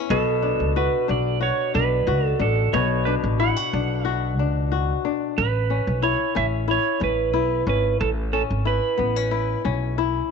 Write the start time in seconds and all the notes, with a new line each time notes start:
Already playing: C#4 E4
0.10 B1 B2 A4
0.42 D4
0.60 C#2
0.76 F#4 B4
1.08 B1 D4 D5
1.41 F#4 C#5
1.74 B1 D4 B4
2.07 C#2 F#4
2.26 A4
2.39 A1 D4 A4
2.73 B1 B2 C#5
3.05 D4 B4
3.24 A1
3.40 E4 F#5
3.56 F#4
3.73 B1 D4
4.05 F#4 E5
4.37 C#2 D4
4.72 F#4
5.05 D4
5.38 A1 B4
5.70 C#4
5.87 B1
6.02 E4 C#5
6.35 A1 C#4 E5
6.68 E4 C#5
7.00 A1 C#4 B4
7.33 B1 E4
7.67 G#1 C#4 B4
8.01 A1 A4
8.33 C#4 A4
8.51 G#1
8.65 E4 B4
8.98 A1 B3
9.16 C#4
9.31 E4
9.65 B1 C#4
9.98 E4